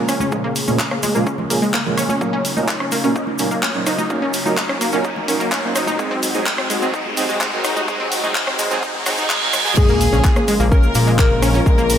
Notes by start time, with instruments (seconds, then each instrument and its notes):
Already playing: analog synth pad C#3 G#3 A#3 F4 G#4, riser
0.08 synth pluck C#4, cross-stick, open hi-hat, cabasa
0.20 synth pluck C#4, high conga, cabasa
0.32 supersaw synth A#2 F3 G#3 A#3 C#4 G#4, synth pluck G#3, kick, cabasa
0.44 synth pluck A#3
0.56 open hi-hat, cabasa
0.68 supersaw synth A#2 F3 G#3 A#3 C#4 G#4, synth pluck C#4, high conga, cabasa
0.78 kick, clap, cabasa
0.91 synth pluck A#3, cross-stick
1.03 synth pluck G#3, open hi-hat, high conga, cabasa
1.15 supersaw synth A#2 F3 G#3 A#3 C#4 G#4, synth pluck A#3, cabasa
1.26 synth pluck C#4, kick, cabasa
1.38 high conga, low conga
1.50 supersaw synth A#2 F3 G#3 A#3 C#4 G#4, synth pluck A#3, open hi-hat, cabasa
1.62 synth pluck G#3, cabasa
1.74 synth pluck A#3, kick, clap, high conga, cabasa
1.86 supersaw synth A#2 F3 G#3 A#3 C#4 A#4, low conga
1.98 synth pluck C#4, cross-stick, open hi-hat, cabasa
2.09 synth pluck C#4, high conga, cabasa
2.21 supersaw synth A#2 F#3 A#3 C#4 D#4 A#4, analog synth pad F#3 D#4 F#4, synth pluck A#3, kick, cabasa
2.33 synth pluck C#4
2.45 open hi-hat, cabasa
2.57 supersaw synth A#2 F#3 A#3 C#4 D#4 A#4, synth pluck D#4, high conga, cabasa
2.68 kick, clap, cabasa
2.80 synth pluck C#4, cross-stick
2.92 synth pluck A#3, open hi-hat, high conga, cabasa
3.04 supersaw synth A#2 F#3 A#3 C#4 D#4 A#4, synth pluck C#4, cabasa
3.16 synth pluck D#4, kick, cabasa
3.27 high conga
3.38 supersaw synth A#2 F#3 A#3 C#4 D#4 A#4, synth pluck C#4, open hi-hat, cabasa
3.51 synth pluck A#3, cabasa
3.63 synth pluck C#4, kick, clap, high conga, cabasa
3.75 supersaw synth A#2 F#3 A#3 C#4 D#4 C5
3.86 synth pluck D#4, cross-stick, open hi-hat, cabasa
3.98 synth pluck D#4, high conga, cabasa
4.10 supersaw synth A#2 F#3 A#3 C#4 D#4 A#4, synth pluck A#3, kick, cabasa
4.22 synth pluck C#4
4.33 open hi-hat, cabasa
4.46 supersaw synth A#2 F#3 A#3 C#4 D#4 A#4, synth pluck D#4, high conga, cabasa
4.57 kick, clap, cabasa
4.69 synth pluck C#4, cross-stick
4.81 synth pluck A#3, open hi-hat, cabasa
4.92 supersaw synth A#2 F#3 A#3 C#4 D#4 A#4, synth pluck C#4, cabasa
5.04 synth pluck D#4, kick, cabasa
5.16 high conga, low conga
5.28 supersaw synth A#2 F#3 A#3 C#4 D#4 A#4, synth pluck C#4, open hi-hat, cabasa
5.40 synth pluck A#3, cabasa
5.52 synth pluck C#4, kick, clap, high conga, cabasa
5.64 supersaw synth A#2 F#3 A#3 C#4 D#4 C5
5.75 synth pluck D#4, cross-stick, open hi-hat, cabasa
5.87 synth pluck D#4, high conga, cabasa
5.99 supersaw synth G#2 F#3 G#3 C4 D#4 G#4, analog synth pad C3 G#3, synth pluck G#3, kick, cabasa
6.11 synth pluck C4
6.23 open hi-hat, cabasa
6.34 supersaw synth G#2 F#3 G#3 C4 D#4 G#4, synth pluck D#4, high conga, cabasa
6.46 kick, clap, cabasa
6.58 synth pluck C4, cross-stick
6.70 synth pluck G#3, open hi-hat, high conga, cabasa
6.82 supersaw synth G#2 F#3 G#3 C4 D#4 G#4, synth pluck C4, cabasa
6.94 synth pluck D#4, kick, cabasa
7.06 high conga
7.17 supersaw synth G#2 F#3 G#3 C4 D#4 G#4, synth pluck C4, open hi-hat, cabasa
7.29 synth pluck G#3, cabasa
7.41 synth pluck C4, kick, clap, high conga, cabasa
7.53 supersaw synth G#2 F#3 G#3 C4 D#4 A#4
7.64 synth pluck D#4, cross-stick, open hi-hat, cabasa
7.76 synth pluck D#4, high conga, cabasa
7.88 supersaw synth G#2 F#3 G#3 C4 D#4 G#4, synth pluck G#3, kick, cabasa
8.00 synth pluck C4
8.12 open hi-hat, cabasa
8.23 supersaw synth G#2 F#3 G#3 C4 D#4 G#4, synth pluck D#4, high conga, cabasa
8.35 kick, clap, cabasa
8.47 synth pluck C4, cross-stick
8.59 synth pluck G#3, open hi-hat, cabasa
8.71 supersaw synth G#2 F#3 G#3 C4 D#4 G#4, synth pluck C4, cabasa
8.83 synth pluck D#4, kick, reverse cymbal, cabasa
8.94 high conga, low conga
9.06 supersaw synth G#2 F#3 G#3 C4 D#4 G#4, synth pluck F#4, cross-stick, open hi-hat, cabasa
9.17 synth pluck D#4, cabasa
9.29 synth pluck G#3, kick, clap, high conga, cabasa
9.42 supersaw synth G#2 F#3 G#3 C4 D#4 A#4
9.53 synth pluck G#3, cross-stick, open hi-hat, cabasa
9.65 synth pluck G#4, high conga, cabasa
9.77 analog synth bass A#1, analog synth pad C#3 F3 G#3 A#3 F4, synth pluck G#3, violin section G#4, digital synth lead G#4, kick, crash, sub drop, cabasa
9.89 synth pluck A#3, cabasa
10.01 open hi-hat, cabasa
10.13 analog synth bass A#1, synth pluck C#4, cabasa
10.24 kick, clap, cabasa
10.36 synth pluck A#3, cross-stick, cabasa
10.48 synth pluck G#3, open hi-hat, cabasa
10.60 analog synth bass A#1, synth pluck A#3, cabasa
10.72 synth pluck C#4, violin section A#4, digital synth lead A#4, kick, cabasa
10.83 cabasa
10.95 analog synth bass A#2, synth pluck A#3, open hi-hat, cabasa
11.07 synth pluck G#3, cabasa
11.19 synth pluck A#3, violin section A#4, digital synth lead A#4, kick, clap, cabasa
11.31 analog synth bass A#1
11.42 synth pluck C#4, cross-stick, open hi-hat, cabasa
11.54 synth pluck C#4, cabasa
11.66 analog synth bass A#1, synth pluck G#3, kick, cabasa
11.78 synth pluck A#3, cabasa
11.90 open hi-hat, cabasa